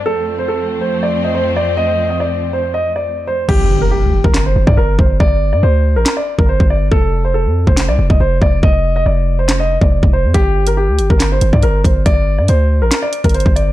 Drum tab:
CC |--------------------------------|--------------------------------|x-------------------------------|--------------------------------|
HH |--------------------------------|--------------------------------|--------------------------------|--------------------------------|
CP |--------------------------------|--------------------------------|----------------x---------------|----------------x---------------|
SD |--------------------------------|--------------------------------|----------------o---------------|----------------o---------------|
BD |--------------------------------|--------------------------------|o-------------o-------o-----o---|o---------------------o---o-----|

CC |--------------------------------|--------------------------------|--------------------------------|--------------------------------|
HH |--------------------------------|--------------------------------|x-----x-----x---x---x---x---x---|x-------x-------x---x-xxxx--x---|
CP |----------------x---------------|----------------x---------------|----------------x---------------|----------------x---------------|
SD |----------------o---------------|----------------o---------------|----------------o---------------|----------------o---------------|
BD |o-------------o-------o-----o---|o---------------------o---o-----|o-------------o-------o-----o---|o---------------------o---o-----|